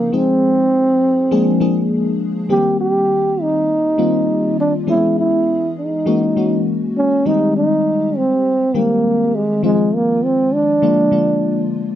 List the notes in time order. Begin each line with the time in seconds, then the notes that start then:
Already playing: C#3 F3 A#3 C4 D#4 G#4
0.12 F3 G#3 C4 D#4 G#4
1.31 F3 G#3 A#3 D4 G#4
1.60 F3 G#3 A#3 D4 G#4
2.49 D#3 G3 A#3 C4 G4
2.81 G4
3.41 D#4
3.98 D#3 G3 A#3 C4 F4
4.60 D4
4.87 E3 G#3 B3 C#4 E4 G#4
5.19 E4
5.79 D#4
6.06 E3 G#3 A#3 C#4 F#4
6.36 E3 G#3 A#3 C#4 F#4
6.98 C#4
7.25 D#3 G3 G#3 C4 D#4 G4
7.57 D#4
8.17 C4
8.74 D#3 G3 G#3 A#3 C4 G4
9.35 G#3
9.63 D#3 F3 G#3 C4 F4
9.95 A#3
10.24 C4
10.54 D4
10.82 D3 F3 G#3 A#3 F4
11.11 D3 F3 G#3 A#3 F4